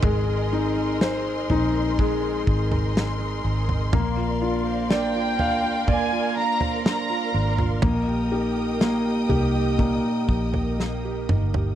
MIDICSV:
0, 0, Header, 1, 7, 480
1, 0, Start_track
1, 0, Tempo, 974026
1, 18, Time_signature, 4, 2, 24, 8
1, 4338, Tempo, 995025
1, 5760, End_track
2, 0, Start_track
2, 0, Title_t, "Violin section"
2, 0, Program_c, 0, 48
2, 2418, Note_on_c, 0, 79, 85
2, 2878, Note_off_c, 0, 79, 0
2, 2906, Note_on_c, 0, 80, 93
2, 3141, Note_on_c, 0, 82, 91
2, 3142, Note_off_c, 0, 80, 0
2, 3362, Note_off_c, 0, 82, 0
2, 3380, Note_on_c, 0, 82, 85
2, 3720, Note_off_c, 0, 82, 0
2, 5760, End_track
3, 0, Start_track
3, 0, Title_t, "String section"
3, 0, Program_c, 1, 48
3, 0, Note_on_c, 1, 68, 64
3, 0, Note_on_c, 1, 70, 68
3, 0, Note_on_c, 1, 75, 66
3, 0, Note_on_c, 1, 84, 79
3, 1920, Note_off_c, 1, 70, 0
3, 1920, Note_off_c, 1, 75, 0
3, 1921, Note_off_c, 1, 68, 0
3, 1934, Note_on_c, 1, 74, 70
3, 1935, Note_on_c, 1, 70, 80
3, 1935, Note_on_c, 1, 77, 74
3, 3838, Note_off_c, 1, 74, 0
3, 3838, Note_off_c, 1, 77, 0
3, 3841, Note_off_c, 1, 84, 0
3, 3852, Note_on_c, 1, 87, 74
3, 3853, Note_on_c, 1, 75, 66
3, 3854, Note_on_c, 1, 79, 68
3, 5757, Note_off_c, 1, 87, 0
3, 5758, Note_off_c, 1, 75, 0
3, 5758, Note_off_c, 1, 79, 0
3, 5760, Note_off_c, 1, 70, 0
3, 5760, End_track
4, 0, Start_track
4, 0, Title_t, "Grand piano"
4, 0, Program_c, 2, 0
4, 0, Control_c, 2, 64, 127
4, 0, Note_on_c, 2, 56, 54
4, 19, Note_off_c, 2, 56, 0
4, 19, Note_on_c, 2, 56, 68
4, 258, Note_on_c, 2, 63, 51
4, 501, Note_on_c, 2, 72, 51
4, 733, Note_off_c, 2, 63, 0
4, 741, Note_on_c, 2, 63, 63
4, 974, Note_off_c, 2, 56, 0
4, 982, Note_on_c, 2, 56, 62
4, 1440, Note_off_c, 2, 72, 0
4, 1679, Note_off_c, 2, 63, 0
4, 1919, Note_off_c, 2, 56, 0
4, 1939, Note_on_c, 2, 58, 65
4, 1944, Control_c, 2, 64, 0
4, 2040, Control_c, 2, 64, 127
4, 2177, Note_on_c, 2, 65, 47
4, 2419, Note_on_c, 2, 74, 56
4, 2660, Note_on_c, 2, 77, 59
4, 2892, Note_off_c, 2, 74, 0
4, 2900, Note_on_c, 2, 74, 59
4, 3118, Note_off_c, 2, 65, 0
4, 3599, Note_off_c, 2, 77, 0
4, 3840, Note_off_c, 2, 58, 0
4, 3840, Note_off_c, 2, 74, 0
4, 3857, Note_on_c, 2, 58, 66
4, 3865, Control_c, 2, 64, 0
4, 3941, Control_c, 2, 64, 127
4, 4098, Note_on_c, 2, 67, 44
4, 4332, Note_off_c, 2, 58, 0
4, 4340, Note_on_c, 2, 58, 53
4, 4567, Note_off_c, 2, 67, 0
4, 4574, Note_on_c, 2, 67, 51
4, 4804, Note_off_c, 2, 58, 0
4, 4811, Note_on_c, 2, 58, 51
4, 5519, Note_off_c, 2, 67, 0
4, 5759, Note_off_c, 2, 58, 0
4, 5760, End_track
5, 0, Start_track
5, 0, Title_t, "Steel-string acoustic guitar"
5, 0, Program_c, 3, 25
5, 0, Note_on_c, 3, 60, 54
5, 0, Note_on_c, 3, 63, 54
5, 0, Note_on_c, 3, 70, 60
5, 19, Note_on_c, 3, 56, 70
5, 133, Note_off_c, 3, 63, 0
5, 139, Note_on_c, 3, 63, 53
5, 257, Note_off_c, 3, 60, 0
5, 259, Note_on_c, 3, 60, 60
5, 378, Note_off_c, 3, 70, 0
5, 380, Note_on_c, 3, 70, 59
5, 499, Note_off_c, 3, 60, 0
5, 501, Note_on_c, 3, 60, 70
5, 616, Note_off_c, 3, 63, 0
5, 621, Note_on_c, 3, 63, 57
5, 739, Note_off_c, 3, 60, 0
5, 741, Note_on_c, 3, 60, 58
5, 856, Note_off_c, 3, 63, 0
5, 862, Note_on_c, 3, 63, 55
5, 973, Note_off_c, 3, 56, 0
5, 979, Note_on_c, 3, 56, 79
5, 1091, Note_off_c, 3, 63, 0
5, 1097, Note_on_c, 3, 63, 54
5, 1215, Note_off_c, 3, 60, 0
5, 1217, Note_on_c, 3, 60, 53
5, 1336, Note_off_c, 3, 70, 0
5, 1338, Note_on_c, 3, 70, 67
5, 1455, Note_off_c, 3, 60, 0
5, 1457, Note_on_c, 3, 60, 61
5, 1571, Note_off_c, 3, 63, 0
5, 1577, Note_on_c, 3, 63, 60
5, 1695, Note_off_c, 3, 60, 0
5, 1697, Note_on_c, 3, 60, 54
5, 1809, Note_off_c, 3, 63, 0
5, 1815, Note_on_c, 3, 63, 51
5, 1932, Note_off_c, 3, 56, 0
5, 1934, Note_on_c, 3, 58, 77
5, 1984, Note_off_c, 3, 63, 0
5, 2055, Note_on_c, 3, 65, 54
5, 2173, Note_off_c, 3, 60, 0
5, 2175, Note_on_c, 3, 62, 59
5, 2292, Note_off_c, 3, 70, 0
5, 2294, Note_on_c, 3, 72, 62
5, 2409, Note_off_c, 3, 62, 0
5, 2415, Note_on_c, 3, 62, 69
5, 2531, Note_off_c, 3, 65, 0
5, 2537, Note_on_c, 3, 65, 60
5, 2652, Note_off_c, 3, 62, 0
5, 2658, Note_on_c, 3, 62, 56
5, 2772, Note_off_c, 3, 65, 0
5, 2778, Note_on_c, 3, 65, 58
5, 2892, Note_off_c, 3, 58, 0
5, 2894, Note_on_c, 3, 58, 78
5, 3010, Note_off_c, 3, 65, 0
5, 3016, Note_on_c, 3, 65, 59
5, 3130, Note_off_c, 3, 62, 0
5, 3136, Note_on_c, 3, 62, 54
5, 3250, Note_off_c, 3, 72, 0
5, 3256, Note_on_c, 3, 72, 68
5, 3370, Note_off_c, 3, 62, 0
5, 3376, Note_on_c, 3, 62, 57
5, 3491, Note_off_c, 3, 65, 0
5, 3497, Note_on_c, 3, 65, 53
5, 3611, Note_off_c, 3, 62, 0
5, 3617, Note_on_c, 3, 62, 56
5, 3730, Note_off_c, 3, 65, 0
5, 3736, Note_on_c, 3, 65, 52
5, 3859, Note_on_c, 3, 46, 74
5, 3906, Note_off_c, 3, 65, 0
5, 3906, Note_off_c, 3, 72, 0
5, 3907, Note_off_c, 3, 62, 0
5, 3981, Note_on_c, 3, 67, 54
5, 4099, Note_on_c, 3, 63, 53
5, 4221, Note_on_c, 3, 70, 53
5, 4338, Note_off_c, 3, 58, 0
5, 4340, Note_on_c, 3, 58, 64
5, 4456, Note_off_c, 3, 67, 0
5, 4462, Note_on_c, 3, 67, 50
5, 4576, Note_off_c, 3, 63, 0
5, 4578, Note_on_c, 3, 63, 56
5, 4692, Note_off_c, 3, 67, 0
5, 4697, Note_on_c, 3, 67, 49
5, 4810, Note_off_c, 3, 46, 0
5, 4816, Note_on_c, 3, 46, 68
5, 4929, Note_off_c, 3, 67, 0
5, 4935, Note_on_c, 3, 67, 53
5, 5054, Note_off_c, 3, 63, 0
5, 5056, Note_on_c, 3, 63, 50
5, 5172, Note_off_c, 3, 70, 0
5, 5174, Note_on_c, 3, 70, 61
5, 5298, Note_off_c, 3, 58, 0
5, 5300, Note_on_c, 3, 58, 56
5, 5416, Note_off_c, 3, 67, 0
5, 5422, Note_on_c, 3, 67, 50
5, 5540, Note_off_c, 3, 63, 0
5, 5542, Note_on_c, 3, 63, 49
5, 5659, Note_off_c, 3, 67, 0
5, 5665, Note_on_c, 3, 67, 47
5, 5760, Note_off_c, 3, 46, 0
5, 5760, Note_off_c, 3, 58, 0
5, 5760, Note_off_c, 3, 63, 0
5, 5760, Note_off_c, 3, 67, 0
5, 5760, Note_off_c, 3, 70, 0
5, 5760, End_track
6, 0, Start_track
6, 0, Title_t, "Fingered electric bass"
6, 0, Program_c, 4, 33
6, 16, Note_on_c, 4, 32, 102
6, 721, Note_off_c, 4, 32, 0
6, 739, Note_on_c, 4, 34, 92
6, 1199, Note_off_c, 4, 34, 0
6, 1219, Note_on_c, 4, 32, 101
6, 1679, Note_off_c, 4, 32, 0
6, 1698, Note_on_c, 4, 32, 97
6, 1921, Note_off_c, 4, 32, 0
6, 1938, Note_on_c, 4, 34, 109
6, 2658, Note_off_c, 4, 34, 0
6, 2658, Note_on_c, 4, 36, 85
6, 3138, Note_off_c, 4, 36, 0
6, 3138, Note_on_c, 4, 34, 84
6, 3598, Note_off_c, 4, 34, 0
6, 3619, Note_on_c, 4, 32, 78
6, 3843, Note_off_c, 4, 32, 0
6, 3858, Note_on_c, 4, 34, 92
6, 4557, Note_off_c, 4, 34, 0
6, 4575, Note_on_c, 4, 36, 87
6, 4913, Note_off_c, 4, 36, 0
6, 5053, Note_on_c, 4, 34, 89
6, 5520, Note_off_c, 4, 34, 0
6, 5540, Note_on_c, 4, 31, 82
6, 5760, Note_off_c, 4, 31, 0
6, 5760, End_track
7, 0, Start_track
7, 0, Title_t, "Drums"
7, 13, Note_on_c, 9, 43, 106
7, 16, Note_on_c, 9, 36, 98
7, 62, Note_off_c, 9, 43, 0
7, 66, Note_off_c, 9, 36, 0
7, 499, Note_on_c, 9, 38, 106
7, 548, Note_off_c, 9, 38, 0
7, 738, Note_on_c, 9, 43, 64
7, 787, Note_off_c, 9, 43, 0
7, 980, Note_on_c, 9, 36, 83
7, 1030, Note_off_c, 9, 36, 0
7, 1219, Note_on_c, 9, 36, 84
7, 1268, Note_off_c, 9, 36, 0
7, 1338, Note_on_c, 9, 43, 61
7, 1388, Note_off_c, 9, 43, 0
7, 1464, Note_on_c, 9, 38, 114
7, 1513, Note_off_c, 9, 38, 0
7, 1818, Note_on_c, 9, 43, 62
7, 1867, Note_off_c, 9, 43, 0
7, 1937, Note_on_c, 9, 36, 97
7, 1937, Note_on_c, 9, 43, 100
7, 1986, Note_off_c, 9, 43, 0
7, 1987, Note_off_c, 9, 36, 0
7, 2417, Note_on_c, 9, 38, 110
7, 2467, Note_off_c, 9, 38, 0
7, 2657, Note_on_c, 9, 43, 64
7, 2706, Note_off_c, 9, 43, 0
7, 2895, Note_on_c, 9, 43, 59
7, 2897, Note_on_c, 9, 36, 85
7, 2945, Note_off_c, 9, 43, 0
7, 2947, Note_off_c, 9, 36, 0
7, 3255, Note_on_c, 9, 43, 56
7, 3304, Note_off_c, 9, 43, 0
7, 3380, Note_on_c, 9, 38, 113
7, 3430, Note_off_c, 9, 38, 0
7, 3738, Note_on_c, 9, 43, 61
7, 3787, Note_off_c, 9, 43, 0
7, 3855, Note_on_c, 9, 43, 100
7, 3857, Note_on_c, 9, 36, 109
7, 3904, Note_off_c, 9, 43, 0
7, 3907, Note_off_c, 9, 36, 0
7, 4342, Note_on_c, 9, 38, 108
7, 4390, Note_off_c, 9, 38, 0
7, 4577, Note_on_c, 9, 43, 67
7, 4625, Note_off_c, 9, 43, 0
7, 4815, Note_on_c, 9, 36, 77
7, 4863, Note_off_c, 9, 36, 0
7, 5054, Note_on_c, 9, 36, 82
7, 5102, Note_off_c, 9, 36, 0
7, 5174, Note_on_c, 9, 43, 52
7, 5222, Note_off_c, 9, 43, 0
7, 5300, Note_on_c, 9, 38, 53
7, 5349, Note_off_c, 9, 38, 0
7, 5539, Note_on_c, 9, 45, 85
7, 5587, Note_off_c, 9, 45, 0
7, 5659, Note_on_c, 9, 43, 85
7, 5708, Note_off_c, 9, 43, 0
7, 5760, End_track
0, 0, End_of_file